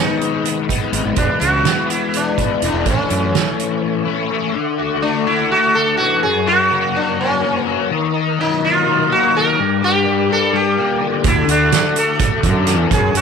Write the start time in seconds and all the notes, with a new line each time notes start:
Already playing: D#3 G#3 B3 G#4 B4 D#5 B5
0.00 D#4
0.21 closed hi-hat
0.45 closed hi-hat
0.69 G#3 B3 D#4, kick, closed hi-hat
0.92 G#1 G#2 D#3 G#3 B3 D#4, closed hi-hat
1.05 G#1
1.16 E1 E3 G#3 B3 D4 E4 G#4 E5 B5, kick, closed hi-hat
1.40 C#2 B3 E4 F#4, closed hi-hat
1.45 G#3
1.64 E3 G#3 B3 E4, snare, closed hi-hat
1.90 E4, closed hi-hat
2.14 D4, closed hi-hat
2.38 G#3 B3 E4, kick, closed hi-hat
2.62 E1 E3 G#3 B3 D4 E4, closed hi-hat
2.73 E1
2.86 A1 A2 E3 A3 C#4 E4 A4 C#5 E5 C#6, kick, closed hi-hat
3.10 F#2 A3 C#4 E4, closed hi-hat
3.34 E3 A3 C#4 E4, snare, closed hi-hat
3.60 closed hi-hat
3.83 B3
4.05 A3 C#4 E4
4.29 A2 E3 A3 C#4 E4
4.54 D3 A4 E5 F#5 D6
4.78 F#4
5.02 A3 D4
5.26 E4 F#4
5.52 A3 F#4
5.75 D4 A4
5.97 E3 F#4
6.23 F#2 G#4 A#4 C#5 F#5 C#6
6.47 F#4
6.71 A#3
6.95 D4 F#4
7.19 A#3 C#4
7.43 C#4
7.67 F#3
7.90 D#3 A#4 D#5 A#5 D#6
8.14 D#4
8.38 F#3 D#4
8.63 D#4 F4
8.86 F#3
9.10 A#3 F#4
9.35 D#3 A#4
9.58 G2 D5 G5 D6
9.82 D4 G4
10.06 G3
10.30 D4 A4
10.54 G3 G4
10.77 A#3
11.01 D3
11.24 D2 D3 E4 A4 E5 F#5, kick, closed hi-hat
11.48 D2 D4 F#4, closed hi-hat
11.72 A3, snare, closed hi-hat
11.96 F#4 A4, closed hi-hat
12.19 A3, kick, closed hi-hat
12.43 F#2 D4, kick, closed hi-hat
12.67 E3, snare, closed hi-hat
12.78 E2
12.90 F#2 G#4 A#4 C#5 C#6, kick, closed hi-hat
13.14 F#2 C#4 F#4, closed hi-hat